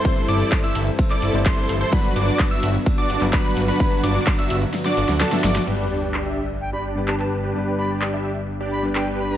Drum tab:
CC |----------------|----------------|----------------|x---------------|
RD |x---x---x---x---|x---x---x---x---|x---x---x---x---|----------------|
HH |xxoxxooxxxoxxxox|xxoxxxoxxxooxxox|xxoxxooxxxoxxxox|----------------|
CP |----x----x--x---|----x------xx---|----x-------x---|----x-------xx--|
SD |----------------|----------------|--------oo-ooooo|----------------|
BD |o---o---o---o---|o---o---o---o---|o---o-----------|----------------|

CC |----------------|
RD |----------------|
HH |----------------|
CP |----x-------x---|
SD |----------------|
BD |----------------|